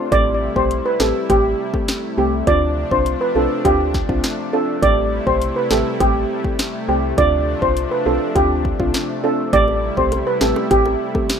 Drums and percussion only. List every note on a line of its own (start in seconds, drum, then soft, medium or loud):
0.12 kick loud
0.12 closed hi-hat medium
0.56 kick loud
0.71 closed hi-hat medium
1.00 snare loud
1.30 kick loud
1.30 closed hi-hat medium
1.74 kick loud
1.88 snare loud
1.88 closed hi-hat medium
2.47 kick loud
2.47 closed hi-hat medium
2.91 kick medium
3.06 closed hi-hat medium
3.65 kick loud
3.65 closed hi-hat medium
3.94 kick loud
3.94 snare medium
4.09 kick loud
4.24 snare loud
4.24 closed hi-hat medium
4.83 kick loud
4.83 closed hi-hat medium
5.27 kick loud
5.42 closed hi-hat medium
5.71 snare loud
6.00 kick loud
6.00 closed hi-hat medium
6.44 kick loud
6.59 snare loud
6.59 closed hi-hat medium
7.18 kick loud
7.18 closed hi-hat medium
7.62 kick medium
7.77 closed hi-hat medium
8.36 kick loud
8.36 closed hi-hat medium
8.65 kick loud
8.80 kick loud
8.94 snare loud
8.94 closed hi-hat medium
9.53 kick loud
9.53 closed hi-hat medium
9.68 high bongo soft
9.97 kick medium
10.12 closed hi-hat medium
10.12 high bongo medium
10.41 snare loud
10.41 high bongo medium
10.56 high bongo medium
10.71 kick loud
10.71 closed hi-hat medium
10.86 high bongo medium
11.15 kick loud
11.15 high bongo medium
11.29 snare loud
11.29 closed hi-hat medium